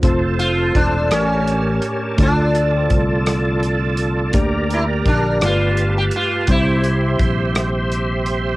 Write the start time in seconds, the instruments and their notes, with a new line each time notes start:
0.02 fingered electric bass F1, tine electric piano A3 C4 F4 C5, tonewheel organ F4 A4 C5 A5, kick, closed hi-hat
0.39 sitar F4, closed hi-hat
0.75 fingered electric bass E1, sitar D4, kick, closed hi-hat
1.11 fingered electric bass A1, tine electric piano A2 A3 C#4 G4 A#4, sitar C#4, tonewheel organ G4 A#4 C#5, cross-stick, closed hi-hat
1.47 closed hi-hat
1.82 closed hi-hat
2.17 fingered electric bass D2, tine electric piano D3 A3 D4 E4 D5, tonewheel organ F4 A4 D5 A5, kick, closed hi-hat
2.22 sitar D4, tine electric piano F4
2.55 closed hi-hat
2.76 sitar C4
2.90 fingered electric bass C2, kick, closed hi-hat
3.26 cross-stick, closed hi-hat
3.63 closed hi-hat
3.97 closed hi-hat
4.33 fingered electric bass D2, tine electric piano D3 A#3 D4 G4 D5, tonewheel organ G4 A#4 A#5, kick, closed hi-hat
4.70 sitar E4, closed hi-hat
5.06 fingered electric bass A#1, sitar D4, kick, closed hi-hat
5.41 fingered electric bass G1, tine electric piano G2 A3 F4 G4 A#4, sitar F4, tonewheel organ B4 F5 A5, cross-stick, closed hi-hat
5.50 tine electric piano B4
5.77 closed hi-hat
5.98 sitar G4
6.11 closed hi-hat
6.16 sitar F4
6.47 fingered electric bass C2, tine electric piano C3 G3 C4 E4 C5, sitar E4, tonewheel organ C5 E5 C6, kick, closed hi-hat
6.84 closed hi-hat
7.19 fingered electric bass A#1, kick, closed hi-hat
7.55 cross-stick, closed hi-hat
7.92 closed hi-hat
8.26 closed hi-hat